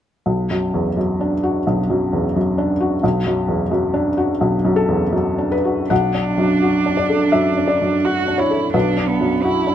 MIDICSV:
0, 0, Header, 1, 3, 480
1, 0, Start_track
1, 0, Key_signature, 2, "minor"
1, 0, Tempo, 705053
1, 175, Time_signature, 4, 2, 24, 8
1, 1132, Tempo, 684151
1, 3052, Tempo, 740741
1, 4492, Tempo, 702576
1, 6629, End_track
2, 0, Start_track
2, 0, Title_t, "Cello"
2, 0, Program_c, 0, 42
2, 4029, Note_on_c, 0, 62, 41
2, 5467, Note_on_c, 0, 66, 39
2, 5477, Note_off_c, 0, 62, 0
2, 5701, Note_on_c, 0, 64, 34
2, 5712, Note_off_c, 0, 66, 0
2, 5933, Note_off_c, 0, 64, 0
2, 5937, Note_on_c, 0, 62, 39
2, 6171, Note_on_c, 0, 59, 34
2, 6181, Note_off_c, 0, 62, 0
2, 6410, Note_on_c, 0, 64, 39
2, 6420, Note_off_c, 0, 59, 0
2, 6629, Note_off_c, 0, 64, 0
2, 6629, End_track
3, 0, Start_track
3, 0, Title_t, "Felt piano"
3, 0, Program_c, 1, 0
3, 176, Note_on_c, 1, 35, 29
3, 320, Control_c, 1, 64, 127
3, 344, Note_on_c, 1, 42, 25
3, 503, Note_on_c, 1, 40, 22
3, 599, Note_off_c, 1, 42, 0
3, 660, Note_on_c, 1, 42, 23
3, 661, Note_off_c, 1, 40, 0
3, 821, Note_on_c, 1, 62, 26
3, 914, Note_off_c, 1, 42, 0
3, 976, Note_on_c, 1, 66, 28
3, 1072, Note_off_c, 1, 62, 0
3, 1106, Note_off_c, 1, 35, 0
3, 1136, Note_on_c, 1, 35, 28
3, 1229, Note_off_c, 1, 66, 0
3, 1298, Note_on_c, 1, 42, 31
3, 1459, Note_on_c, 1, 40, 25
3, 1551, Note_off_c, 1, 42, 0
3, 1616, Note_off_c, 1, 40, 0
3, 1622, Note_on_c, 1, 42, 27
3, 1776, Note_on_c, 1, 62, 30
3, 1873, Note_off_c, 1, 42, 0
3, 1933, Note_on_c, 1, 66, 34
3, 2029, Note_off_c, 1, 62, 0
3, 2063, Note_off_c, 1, 35, 0
3, 2094, Note_on_c, 1, 35, 44
3, 2102, Control_c, 1, 64, 0
3, 2185, Note_off_c, 1, 66, 0
3, 2198, Control_c, 1, 64, 127
3, 2256, Note_on_c, 1, 42, 33
3, 2409, Note_on_c, 1, 40, 26
3, 2506, Note_off_c, 1, 42, 0
3, 2568, Note_off_c, 1, 40, 0
3, 2570, Note_on_c, 1, 42, 37
3, 2728, Note_on_c, 1, 62, 38
3, 2827, Note_off_c, 1, 42, 0
3, 2894, Note_on_c, 1, 66, 37
3, 2988, Note_off_c, 1, 62, 0
3, 3028, Note_off_c, 1, 35, 0
3, 3058, Note_on_c, 1, 35, 35
3, 3148, Note_off_c, 1, 66, 0
3, 3212, Note_on_c, 1, 42, 38
3, 3286, Note_on_c, 1, 69, 54
3, 3366, Note_on_c, 1, 40, 30
3, 3462, Note_off_c, 1, 42, 0
3, 3522, Note_on_c, 1, 42, 33
3, 3525, Note_off_c, 1, 40, 0
3, 3689, Note_on_c, 1, 62, 28
3, 3749, Note_off_c, 1, 69, 0
3, 3776, Note_on_c, 1, 71, 43
3, 3791, Note_off_c, 1, 42, 0
3, 3861, Note_on_c, 1, 66, 27
3, 3961, Note_off_c, 1, 62, 0
3, 4001, Note_off_c, 1, 35, 0
3, 4008, Note_off_c, 1, 71, 0
3, 4025, Note_on_c, 1, 78, 51
3, 4026, Note_off_c, 1, 66, 0
3, 4027, Note_on_c, 1, 35, 37
3, 4039, Control_c, 1, 64, 0
3, 4157, Control_c, 1, 64, 127
3, 4183, Note_on_c, 1, 62, 26
3, 4333, Note_on_c, 1, 42, 23
3, 4431, Note_off_c, 1, 62, 0
3, 4492, Note_on_c, 1, 66, 30
3, 4587, Note_off_c, 1, 42, 0
3, 4654, Note_on_c, 1, 62, 26
3, 4708, Note_off_c, 1, 78, 0
3, 4731, Note_on_c, 1, 74, 47
3, 4751, Note_off_c, 1, 66, 0
3, 4816, Note_on_c, 1, 69, 29
3, 4914, Note_off_c, 1, 62, 0
3, 4952, Note_off_c, 1, 35, 0
3, 4960, Note_off_c, 1, 74, 0
3, 4970, Note_on_c, 1, 76, 52
3, 4979, Note_on_c, 1, 42, 30
3, 5076, Note_off_c, 1, 69, 0
3, 5142, Note_on_c, 1, 62, 33
3, 5200, Note_off_c, 1, 76, 0
3, 5212, Note_on_c, 1, 74, 42
3, 5238, Note_off_c, 1, 42, 0
3, 5308, Note_on_c, 1, 42, 27
3, 5399, Note_off_c, 1, 62, 0
3, 5464, Note_on_c, 1, 66, 30
3, 5561, Note_off_c, 1, 42, 0
3, 5623, Note_on_c, 1, 62, 27
3, 5669, Note_off_c, 1, 74, 0
3, 5693, Note_on_c, 1, 73, 41
3, 5718, Note_off_c, 1, 66, 0
3, 5780, Note_on_c, 1, 69, 30
3, 5876, Note_off_c, 1, 62, 0
3, 5918, Note_off_c, 1, 73, 0
3, 5938, Note_on_c, 1, 35, 37
3, 5939, Note_on_c, 1, 71, 43
3, 5952, Control_c, 1, 64, 0
3, 6034, Note_off_c, 1, 69, 0
3, 6078, Control_c, 1, 64, 127
3, 6098, Note_on_c, 1, 62, 29
3, 6258, Note_on_c, 1, 42, 23
3, 6351, Note_off_c, 1, 62, 0
3, 6420, Note_on_c, 1, 66, 33
3, 6511, Note_off_c, 1, 42, 0
3, 6574, Note_on_c, 1, 62, 27
3, 6629, Note_off_c, 1, 35, 0
3, 6629, Note_off_c, 1, 62, 0
3, 6629, Note_off_c, 1, 66, 0
3, 6629, Note_off_c, 1, 71, 0
3, 6629, End_track
0, 0, End_of_file